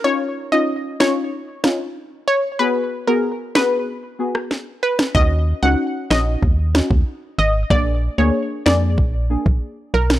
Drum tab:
SD |------o---o-----|------o----ro--o|------o---o-----|------o--------o|
BD |----------------|----------------|o-------o--o----|o-------o--o----|